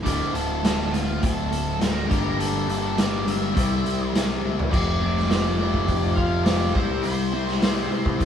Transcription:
0.03 picked electric bass D1, clean electric guitar D2 A2 D3, distorted electric guitar D2 A2 D3 A3 F4, lead electric guitar D5, kick, closed hi-hat
0.33 picked electric bass D1, clean electric guitar D2 A2, lead electric guitar A4, closed hi-hat
0.63 clean electric guitar D2 A2, snare, closed hi-hat
0.92 clean electric guitar D2 A2, lead electric guitar F4, closed hi-hat
1.21 picked electric bass D1, clean electric guitar D2 A2, lead electric guitar A4, kick, closed hi-hat
1.51 clean electric guitar D2 A2, closed hi-hat
1.79 clean electric guitar D2 A2, lead electric guitar A#4, snare, closed hi-hat
2.08 picked electric bass G1, clean electric guitar G2 D3 G3, distorted electric guitar G2 D3 G3 A#3 D4 G4, kick, closed hi-hat
2.38 clean electric guitar G2 D3 G3, lead electric guitar A4, closed hi-hat
2.68 picked electric bass G1, clean electric guitar G2 D3, closed hi-hat
2.97 clean electric guitar G2 D3, lead electric guitar D5, snare, closed hi-hat
3.26 clean electric guitar G2 D3, lead electric guitar E5, closed hi-hat
3.54 picked electric bass C2, clean electric guitar C3 G3 C4, distorted electric guitar C3 G3 C4, kick, closed hi-hat
3.58 distorted electric guitar E4 G4 C5
3.83 clean electric guitar C3 G3, closed hi-hat
4.12 clean electric guitar C3 G3, snare, closed hi-hat
4.41 clean electric guitar C3 G3, high tom
4.59 floor tom
4.70 picked electric bass F1, clean electric guitar F2, distorted electric guitar F2 C3 F3, lead electric guitar D5, kick, crash
4.99 distorted electric guitar F2 C3, clean electric guitar A3, lead electric guitar D5
5.04 distorted electric guitar F3
5.17 snare
5.27 distorted electric guitar F2 C3, clean electric guitar F3, snare, open hi-hat
5.31 distorted electric guitar F3
5.57 distorted electric guitar F2 C3, clean electric guitar A3, lead electric guitar D5
5.62 distorted electric guitar F3
5.73 picked electric bass F1, kick
5.86 picked electric bass F1, distorted electric guitar F2 C3 F3, clean electric guitar C4, kick, open hi-hat
6.14 picked electric bass F1, distorted electric guitar F2 C3, clean electric guitar F4, lead electric guitar F5, kick
6.18 distorted electric guitar F3
6.44 distorted electric guitar F2 C3 F3, clean electric guitar C4, lead electric guitar D5, snare, open hi-hat
6.73 picked electric bass C2, distorted electric guitar C3 G3 C4, clean electric guitar C3, lead electric guitar C5, kick
7.03 distorted electric guitar C3 G3 C4, clean electric guitar C3, lead electric guitar C5, open hi-hat
7.33 distorted electric guitar C3 G3 C4, clean electric guitar E4
7.48 snare
7.61 distorted electric guitar C3 G3 C4, clean electric guitar C4, snare, open hi-hat
7.90 distorted electric guitar C3 G3 C4, clean electric guitar E4
8.06 picked electric bass C2, kick
8.20 picked electric bass C2, distorted electric guitar C3 G3 C4, clean electric guitar G4, kick, open hi-hat

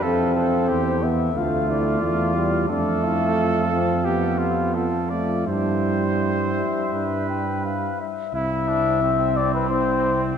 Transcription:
0.02 tuba F2, trombone C4, trumpet A4, french horn A4, cornet F5
0.35 trumpet A4, french horn A4
0.68 tuba E2, trumpet G4, cornet C5
1.02 trombone B3, cornet E5
1.35 tuba D2, trombone A3, trumpet F4, french horn F4, cornet F5
1.69 french horn E4, cornet D5
2.01 tuba E2, trombone A3, french horn F4
2.35 trombone G3
2.68 tuba F2, trombone A3, french horn D4, trumpet A4, cornet D5
3.04 french horn E4, cornet F5
3.39 french horn F4
3.72 trombone C4
4.05 trombone B3, trumpet G4, french horn G4
4.38 trumpet F4
4.74 french horn F4, trumpet A4, cornet F5
5.10 trombone A3, trumpet D5
5.47 tuba G2, trombone G3, french horn E4, trumpet C5, cornet E5
6.21 cornet E5
6.93 tuba G2, trumpet B4
7.29 cornet G5
7.64 cornet F5
8.01 cornet E5
8.34 tuba C2, trombone C4, french horn E4, trumpet E4, cornet E5
8.68 trumpet D4
9.02 trumpet C4
9.36 cornet D5
9.54 cornet B4
9.69 trombone C4, french horn E4, cornet C5

